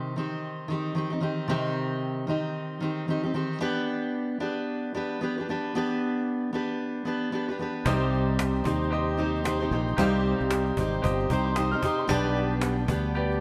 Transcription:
Already playing: C3 D#3 C4 D#4 G4
0.16 D#3 C4 D#4 G4
0.68 D#3 C4 D#4 G4
0.95 D#3 C4 D#4 G4
1.10 C4 D#4 G4
1.20 D#3 C4 D#4 G4
1.48 C3 D#3 C4 D#4 G4
2.27 D#3 C4 D#4 G4
2.80 D#3 C4 D#4 G4
3.08 D#3 C4 D#4 G4
3.23 C4 D#4 G4
3.34 D#3 C4 D#4 G4
3.60 B3 D4 G4 B4
4.40 B3 D4 G4 B4
4.94 B3 D4 G4 B4
5.21 B3 D4 G4 B4
5.38 D4 G4 B4
5.49 B3 D4 G4 B4
5.75 B3 D4 G4 B4
6.53 B3 D4 G4 B4
7.05 B3 D4 G4 B4
7.32 B3 D4 G4 B4
7.48 D4 G4 B4
7.59 B3 D4 G4 B4
7.85 C2 C3 G3 C4 D#4 G4 C5 D#5, cajon bass
8.02 cajon slap
8.14 cajon slap
8.28 cajon slap
8.39 cajon slap
8.55 cajon slap
8.64 D#2 C4 D#4 G4 C5, cajon bass
8.83 cajon slap
8.90 G4 C5 D#5, cajon slap
9.09 cajon slap
9.17 C4 D#4 G4 C5
9.36 cajon slap
9.44 C4 D#4 G4 C5, cajon slap
9.60 C4 D#4 G4 C5, cajon slap
9.71 A#1 C4 D#4 G4 C5, cajon slap
9.88 cajon slap
9.97 C2 C3 G3 C4 D#4 G4 C5 F5, cajon bass
10.15 cajon slap
10.25 cajon slap
10.40 C2, cajon slap
10.51 cajon slap
10.66 cajon slap
10.77 G#1 C4 D#4 G4 C5, cajon bass
10.93 cajon slap
11.02 G1 G4 C5 D#5, cajon bass
11.20 cajon slap
11.30 C2 C4 D#4 G4 C5 G5 A#5, cajon bass
11.45 C6, cajon slap
11.55 C4 D#4 G4 C5 C6 D#6, cajon slap
11.71 C4 D#4 G4 C5 F6, cajon slap
11.82 C4 D#4 G4 C5 C6 D#6, cajon bass
11.98 C6, cajon slap
12.07 B1 G3 B3 D4 G4 B4 D5, cajon bass
12.36 cajon slap
12.51 cajon slap
12.61 cajon slap
12.77 cajon slap
12.88 D2 B3 D4 G4 B4, cajon bass
13.05 cajon slap
13.15 G4 B4 D5, cajon slap
13.31 cajon slap

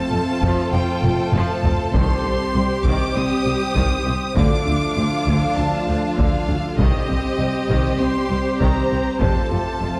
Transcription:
Already playing: F3 A3 C4 F4 A4 C5 A5
0.12 F1 F2 A3 C4
0.42 F1 F2 F3, taiko
0.73 F1 F2 C4 F4 G5
1.03 F1 F2 A3 C4, taiko mid
1.33 F1 F2 F3 A5, taiko low-mid
1.64 F1 F2 C4 F4, taiko low
1.93 C2 C3 D#3 G3 C4 G4 C5 C6, taiko
2.24 C2 C4
2.54 C2 G3 G4
2.85 C2 C3 D#3 D6, taiko
3.15 C2 C4 D#6
3.45 C2 G3
3.75 C2 C3 D#3, taiko
4.06 C2 C4
4.36 D2 D3 F3 A3 D4 F4 A4 F5 D6, taiko
4.66 D2 A3 D4
4.97 D2 F3 A3
5.27 D2 D3, taiko
5.57 D2 A3 D4 A5
5.88 D2 F3 A3
6.18 D2 D3 F5, taiko
6.49 D2 A3 D4
6.78 C2 C3 D#3 G3 C4 G4 C5 D#5, taiko
7.09 C2 C4
7.39 C2 G3
7.69 C2 C3 D#3, taiko
7.99 C2 C4 C6
8.30 C2 G3
8.60 C2 C3 D#3 A#5, taiko
8.90 C2 C4
9.21 F1 F2 C3 F3 A3 F4 A4 A5, taiko
9.51 F1 F2 A3 F4
9.81 F1 F2 F3 C4 F4

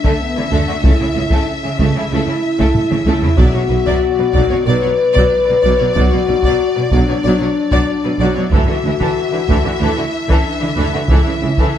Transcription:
Already playing: D4 E5
0.04 D3 A3 A4, taiko
0.22 B3
0.37 D3 A3 E4
0.43 C#4
0.51 D2 D3 A3 A4
0.63 D4
0.68 D3 A3 F#4
0.83 C#2 C#3 A3 E4 A4, taiko
1.00 C#3 A3 E4
1.15 C#2 C#3 A3 C#4
1.30 C#3 A3 A4, taiko
1.47 C#4
1.64 C#3 A3 C#4
1.79 C#2 C#3 A3 A4, taiko
1.95 C#3 A3 E4
2.10 C#2 C#3 A3 E4 A4
2.27 C#3 A3 E4
2.59 C#3 A3 A4, taiko
2.75 taiko low-mid
2.91 C#3 A3 C#4, taiko mid
3.06 C#2 C#3 A3 E4 A4, taiko high
3.22 C#3 A3 E4, taiko low
3.37 B1 B2 F#3 F#4 D5, taiko
3.54 B2 F#3 C#5
3.69 B1 B2 F#3 B4
3.86 B2 F#3 D5, taiko
4.03 D5
4.18 B2 F#3 B4
4.33 B1 B2 F#3 D5, taiko
4.50 B2 F#3 C#5
4.66 B1 B2 F#3 B4 D5
4.82 B2 F#3 C#5
5.13 B2 D5, taiko
5.17 F#3
5.44 B4
5.49 B2 F#3
5.61 B1 B2 D5
5.66 F#3
5.77 B2 C#5
5.83 F#3
5.93 B1 B2 F#4 D5, taiko
5.98 F#3
6.10 B2 F#3 C#5
6.26 B1 B2 B4
6.30 F#3
6.43 B2 F#3 D5, taiko
6.75 B2 F#3 B4
6.91 B1 B2 F#3 D4 D5, taiko
7.08 B2 F#3 C#5
7.23 B1 B2 F#3 D5
7.40 B2 F#3 C#5
7.71 B2 F#3 D5, taiko
8.04 B2 F#3 B4
8.19 B1 B2 F#3 D5
8.35 B2 F#3 C#5
8.52 D2 D3 E3 F#4 A4 E5, taiko
8.67 D3 E3 F#4
8.83 D2 D3 E3 E4
9.00 D3 E3 A4, taiko
9.32 D3 E3 E4
9.48 D2 D3 E3 A4, taiko
9.65 D3 E3 F#4
9.80 D2 D3 E3 E4 A4
9.97 D3 E3 F#4
10.29 D3 E3 C#4 A4, taiko
10.46 D4
10.61 D3 E3 E4
10.77 D2 D3 E3 A4
10.94 D3 E3 F#4
11.09 C#2 C#3 E3 E4 A4, taiko
11.25 C#3 E3 E4
11.41 C#2 C#3 E3 C#4
11.58 C#3 E3 A4, taiko

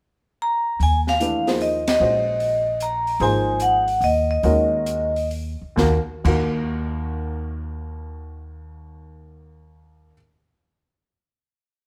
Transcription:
0.42 A#5
0.80 D#2 G#5, open hi-hat
1.07 F5, snare
1.20 E3 A3 D4 G4 B4, closed hi-hat
1.47 F3 A#3 D#4 G#4 C5, snare, open hi-hat
1.61 D#5, open hi-hat
1.87 D#5, snare, ride
2.00 A#1 G#3 C#4 F#4 C5 D#5
2.40 open hi-hat
2.80 A#5, closed hi-hat
3.07 open hi-hat
3.20 G#1 F3 A#3 D#4 G#4 C5 G#5, open hi-hat
3.60 F#5, closed hi-hat
3.88 open hi-hat
4.01 D#2 D#5, open hi-hat
4.31 D#5
4.43 D#2 D#3 G#3 C#4 F#4 A#4, open hi-hat
4.86 closed hi-hat
5.16 open hi-hat
5.31 open hi-hat
5.61 muted upright bass stroke
5.76 D#2 D#3 A#3 F#4 A#4, kick, snare
6.24 D#2 D#3 A#3 F#4 A#4, kick, crash

